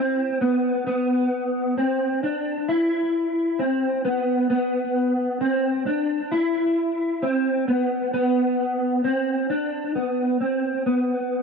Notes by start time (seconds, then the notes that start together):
Already playing: C4
0.41 B3
0.87 B3
1.78 C4
2.23 D4
2.68 E4
3.59 C4
4.05 B3
4.50 B3
5.41 C4
5.86 D4
6.32 E4
7.22 C4
7.68 B3
8.14 B3
9.04 C4
9.50 D4
9.95 B3
10.41 C4
10.86 B3